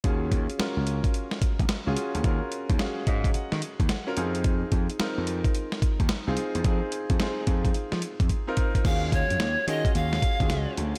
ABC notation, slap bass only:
X:1
M:4/4
L:1/16
Q:"Swing 16ths" 1/4=109
K:Ebdor
V:1 name="Slap bass" clef=bass
E,,2 E,, z2 D,,2 z4 B,,, z D,, z =D,, | E,, z2 E,, z2 A,,2 z E, z E,, z2 F,,2- | F,,2 F,, z2 F,,2 z4 E,, z C,, z _F,, | F,, z2 F,, z2 F,,2 z F, z F,, z4 |
E,,3 G,, E,, z E, z E,,2 z E,, D,, z =D,, z |]